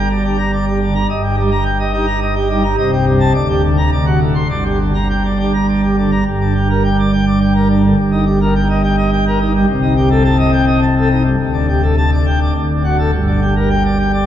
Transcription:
0.00 1.05 G1 medium
0.00 1.05 G2 medium
0.10 0.23 D5 medium
0.24 0.37 D4 medium
0.24 0.37 G4 medium
0.39 0.51 A#5 medium
0.52 0.65 D5 medium
0.67 0.79 G4 medium
0.81 0.93 D3 medium
0.81 0.93 D4 medium
0.95 1.07 A#5 medium
1.09 2.75 G1 medium
1.09 2.74 G2 medium
1.09 1.22 D#5 medium
1.23 1.36 G4 medium
1.37 1.50 G3 medium
1.51 1.64 A#5 loud
1.66 1.78 G5 medium
1.79 1.92 D#5 medium
1.93 2.06 D#4 medium
1.93 2.06 G4 medium
2.07 2.20 A#5 medium
2.22 2.34 D#5 medium
2.36 2.48 G4 medium
2.50 2.62 G3 medium
2.50 2.63 D#4 medium
2.64 2.76 A#5 medium
2.78 3.33 C1 loud
2.78 3.33 C2 loud
2.78 2.91 D#5 medium
2.92 3.05 G4 medium
3.07 3.19 G2 medium
3.20 3.32 A5 loud
3.34 3.90 D1 loud
3.34 3.90 D2 loud
3.34 3.47 D5 medium
3.49 3.62 G4 medium
3.64 3.76 D3 medium
3.78 3.90 A#5 loud
3.92 4.49 D1 medium
3.92 4.49 D2 medium
3.92 4.05 D5 medium
4.06 4.19 F#4 medium
4.20 4.34 A2 medium
4.35 4.48 C6 medium
4.50 6.22 G1 medium
4.50 6.22 G2 medium
4.50 4.64 D5 medium
4.65 4.79 G4 medium
4.80 4.93 D3 medium
4.95 5.08 A#5 medium
5.10 5.23 G5 medium
5.25 5.38 D5 soft
5.39 5.52 D4 medium
5.39 5.52 G4 medium
5.54 5.67 A#5 medium
5.68 5.81 D5 medium
5.83 5.96 G4 medium
5.98 6.11 D3 medium
5.98 6.11 D4 medium
6.12 6.24 A#5 medium
6.26 7.93 G1 medium
6.26 7.93 G2 medium
6.41 6.54 D4 medium
6.55 6.68 G4 medium
6.70 6.83 A#4 medium
6.84 6.97 G5 medium
6.99 7.11 D5 medium
7.13 7.25 G5 medium
7.27 7.39 D5 medium
7.41 7.54 G5 medium
7.55 7.68 A#4 medium
7.70 7.82 D4 medium
7.84 7.96 D3 medium
7.98 9.64 G1 medium
7.98 9.64 G2 medium
8.12 8.25 D#4 medium
8.27 8.39 G4 medium
8.41 8.54 A#4 medium
8.56 8.68 G5 loud
8.69 8.82 D#5 medium
8.84 8.96 G5 medium
8.98 9.10 D#5 medium
9.13 9.24 G5 medium
9.27 9.39 A#4 medium
9.40 9.52 D#4 medium
9.54 9.66 G3 medium
9.68 11.35 C1 loud
9.68 11.35 C2 loud
9.82 9.94 D#4 medium
9.97 10.09 G4 medium
10.11 10.23 A4 medium
10.25 10.37 A5 loud
10.39 10.51 D#5 medium
10.53 10.65 G5 loud
10.67 10.80 D#5 medium
10.82 10.94 A5 medium
10.96 11.09 A4 medium
11.10 11.23 D#4 medium
11.24 11.37 G2 medium
11.39 12.52 D1 medium
11.39 12.52 D2 medium
11.53 11.66 D4 medium
11.69 11.81 G4 medium
11.83 11.95 A4 medium
11.97 12.10 A5 medium
12.12 12.25 D5 medium
12.27 12.39 G5 medium
12.41 12.53 D5 medium
12.55 13.12 D1 medium
12.55 13.12 D2 medium
12.70 12.83 D4 medium
12.84 12.97 F#4 medium
12.99 13.11 A4 medium
13.12 14.26 G1 medium
13.12 14.26 G2 medium
13.27 13.40 D4 medium
13.41 13.54 G4 medium
13.56 13.69 A#4 medium
13.70 13.83 G5 medium
13.85 13.98 D5 medium
13.99 14.12 G5 medium
14.13 14.26 D5 medium

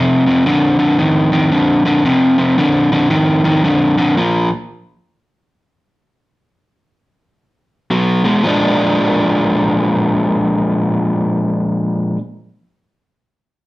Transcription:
0.00 0.23 F2 medium
0.00 0.23 C3 medium
0.26 0.44 F2 medium
0.26 0.44 C3 medium
0.46 0.76 F2 medium
0.46 0.76 D3 medium
0.79 0.97 F2 medium
0.79 0.97 D3 medium
0.98 1.29 F2 medium
0.98 1.29 D#3 medium
1.32 1.50 F2 medium
1.32 1.50 D#3 medium
1.52 1.82 F2 medium
1.52 1.83 D3 medium
1.85 2.03 F2 medium
1.85 2.03 D3 medium
2.05 2.36 F2 medium
2.05 2.36 C3 medium
2.38 2.56 F2 medium
2.38 2.56 C3 medium
2.58 2.89 F2 medium
2.58 2.89 D3 medium
2.92 3.09 F2 medium
2.92 3.10 D3 medium
3.10 3.41 F2 medium
3.10 3.42 D#3 medium
3.44 3.62 F2 medium
3.44 3.63 D#3 medium
3.64 3.95 F2 medium
3.64 3.95 D3 medium
3.98 4.16 F2 medium
3.98 4.16 D3 medium
4.17 4.48 A#2 medium
4.17 4.48 F3 loud
7.90 8.22 B2 medium
7.90 8.22 F#3 medium
8.24 8.42 B2 medium
8.24 8.43 G#3 medium
8.43 12.16 A#2 medium
8.43 12.17 F3 loud
8.43 12.18 G#3 loud
8.47 12.20 D4 loud

